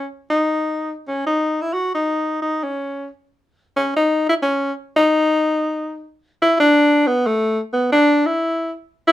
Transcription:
tenor saxophone
0.30 D#4
1.07 C#4
1.27 D#4
1.61 E4
1.74 F#4
1.95 D#4
2.42 D#4
2.63 C#4
3.76 C#4
3.96 D#4
4.29 E4
4.43 C#4
4.96 D#4
6.42 E4
6.60 D4
7.07 B3
7.27 A3
7.73 B3
7.92 D4
8.26 E4
9.08 E4

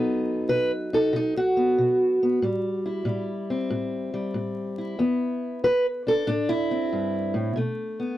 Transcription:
steel-string acoustic guitar
Already playing: B2 F#3 B3 D#4 A4
0.49 B2 B4
0.93 D#4 A4
1.13 B2 D#4
1.37 F#4
1.57 B3
1.78 B2
2.23 B3
2.42 A2 G3
2.86 E4
3.05 A2 G3
3.50 C4
3.70 A2
4.14 G3
4.34 A2
4.78 E4
4.99 E2 B3
5.64 E2 B4
6.07 D4 A4
6.27 A2 D4
6.49 E4
6.71 C4
6.93 G2
7.34 A2
7.56 B2 A3
8.00 B3

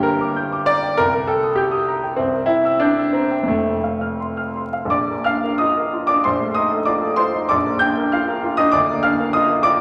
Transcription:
upright piano
Already playing: G1 G2 G4 A#4
0.03 A#4 G5
0.21 D6
0.36 G6
0.52 D6
0.66 D5 A#5
0.83 G5
0.97 C2 A#4
1.14 A#4
1.27 A4 G5
1.43 D#6
1.56 G4 G6
1.71 D#6
1.88 A#5
2.04 G5
2.16 C2 C4
2.33 A#4
2.46 E4 G5
2.65 E6
2.80 D4 G6
2.98 E6
3.13 C4 A#5
3.31 G5
3.43 F2
3.48 F1 A3
3.66 C5
3.84 F5
4.01 F6
4.20 C6
4.37 F6
4.56 C6
4.73 F5
4.85 A#1
4.90 D5 D6
5.10 A#3
5.24 D4 F5 F6
5.44 A#4
5.58 F4 D#5 D#6
5.77 A#4
5.93 F4
6.07 D4 D5 D6
6.24 A#1 C5 C6
6.41 A3
6.54 D#4 D#5 D#6
6.71 A4
6.85 F4 D5 D6
7.02 A4
7.16 F4 C5 C6
7.34 D#4
7.49 A#1 D5 D6
7.66 A#3
7.79 D4 G5 G6
7.97 A#4
8.12 F4 F5 F6
8.28 A#4
8.44 F4
8.57 D4 D#5 D#6
8.72 D2 D5 D6
8.90 A#3
9.03 D4 F5 F6
9.20 A#4
9.33 F4 D#5 D#6
9.48 A#4
9.63 F4 D5 D6

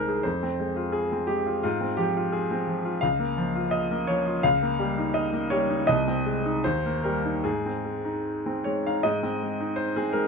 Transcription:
grand piano
Already playing: C2 G#3 D#4 G#4 A#4 C5
0.09 G#4
0.23 F2 C5
0.43 C4
0.60 G#3
0.76 F4
0.92 G#4
1.12 C4
1.27 G#3 G4
1.46 F4
1.63 G#2 F4
1.81 C4
1.97 F3 G4
2.16 F4
2.32 G#4
2.51 C4
2.67 F3
2.85 F4
3.01 C#2 F5
3.20 A#3
3.37 F3
3.56 F4
3.71 D#5
3.91 A#3
4.07 F3 C#5
4.26 F4
4.43 C#2 F5
4.62 A#3
4.79 G3
4.98 D#4
5.14 D#5
5.33 A#3
5.50 G3 C#5
5.70 D#4
5.87 C2 D#5
6.08 C4
6.26 G#3
6.46 D#4
6.64 D#2 C5
6.86 A#3
7.03 G3 A#4
7.25 D#4
7.44 G#2 G#4
7.66 C4
7.85 G#3
8.05 D#4
8.46 C4
8.64 G#3 C#5
8.87 D#4 F5
9.03 G#2 D#5
9.23 C4
9.42 G#3
9.61 D#4
9.76 C5
9.96 C4 G#4
10.13 G#3 A#4

